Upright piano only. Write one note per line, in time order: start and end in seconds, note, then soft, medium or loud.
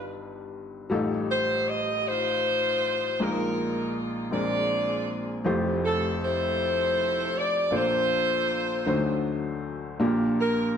0.00 0.86 G1 medium
0.00 0.86 G2 medium
0.00 0.85 D#3 medium
0.00 0.85 G3 medium
0.00 0.86 F4 medium
0.00 0.86 B4 medium
0.90 3.14 A1 medium
0.90 3.14 A2 medium
0.90 3.14 G3 medium
0.90 3.14 D#4 medium
0.90 3.15 F4 medium
0.90 3.15 A4 medium
3.20 4.29 A#1 medium
3.20 4.29 A#2 medium
3.20 4.29 G#3 medium
3.20 3.25 D4 soft
3.20 4.33 F4 medium
3.20 4.31 A#4 medium
3.27 4.36 D#4 medium
4.31 5.42 A#1 medium
4.31 5.41 A#2 medium
4.31 5.45 G#3 medium
4.31 5.46 C4 medium
4.31 5.46 D4 medium
4.31 5.46 A#4 medium
5.44 7.69 F1 medium
5.44 7.69 F2 medium
5.44 7.69 F3 medium
5.44 7.69 A3 medium
5.44 7.69 E4 medium
5.44 7.70 G4 medium
5.44 7.69 C5 medium
7.71 8.82 A#1 medium
7.71 8.82 A#2 medium
7.71 8.86 A#3 medium
7.71 8.85 D4 medium
7.71 8.86 F4 medium
7.71 8.86 A4 medium
7.71 8.86 C5 medium
8.86 9.96 D2 medium
8.86 9.96 D3 medium
8.86 10.00 F#3 medium
8.86 10.00 A3 medium
8.86 9.98 D4 medium
8.86 10.01 D#4 medium
8.86 10.01 C5 medium
10.00 10.77 A#1 medium
10.00 10.77 A#2 medium
10.00 10.77 A#3 medium
10.00 10.77 D4 medium
10.00 10.77 F4 medium
10.00 10.77 G4 medium
10.00 10.77 A#4 medium